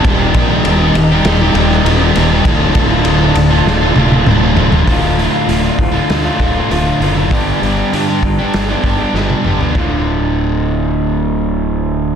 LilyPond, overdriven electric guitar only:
\new Staff \with { instrumentName = "Overdriven electric guitar" } { \clef bass \time 4/4 \key d \dorian \tempo 4 = 99 <ees, bes, ees g g'>8 <bes, ees g g'>8 <ees, bes, ees g g'>8. <ees g g'>8 <ees g g'>16 <bes, ees g g'>8 <ees, bes, ees g g'>16 <ees g g'>16 <bes, ees g g'>16 <ees g g'>16 | <d, a, d a f'>8 <a, d a f'>8 <d, a, d a f'>8. <d a f'>8 <d a f'>16 <a, d a f'>8 <d, a, d a f'>16 <d a f'>16 <a, d a f'>16 <d a f'>16 | <d, a, d a f'>8 <a, d a f'>8 <d, a, d a f'>16 <d a f'>8 <d a f'>8 <d a f'>16 <a, d a f'>16 <d a f'>16 <d, a, d a f'>8 <a, d a f'>16 <d a f'>16 | <g, d g b d' g'>8 <g b d' g'>8 <g, d g b d' g'>16 <g b d' g'>8 <g b d' g'>8 <g b d' g'>16 <g b d' g'>16 <g b d' g'>16 <g, d g b d' g'>8 <g b d' g'>16 <g b d' g'>16 |
<d, a, d>1 | }